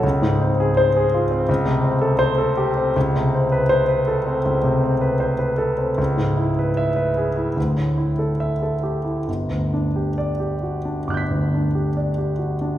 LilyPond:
\new Staff \with { instrumentName = "Grand piano" } { \time 4/4 \key a \mixolydian \tempo 4 = 77 << { r4 bis'8 r4. bis'8 r8 | r4 c''8 r2 r8 | r4 e''8 r4. e''8 r8 | r4 d''8 r8 <d''' fis''' g''' b'''>2 | } \\ { cis,16 gis,16 bis16 gis'8 gis'16 eis'16 bis16 cis,16 bis,16 bis16 a'8 a'16 g'16 bis16 | cis,16 c16 c'16 b'8 b'16 a'16 c'16 cis,16 c16 c'16 b'16 c''16 b'16 a'16 c'16 | cis,16 gis,16 e'16 b'8 b'16 gis'16 e'16 d,16 a,16 e'16 a'8 a'16 g'16 e'16 | g,,16 d,16 d'16 g'8 g'16 fis'16 d'16 g,,16 d,16 d'16 g'16 d''16 g'16 fis'16 d'16 | } >> }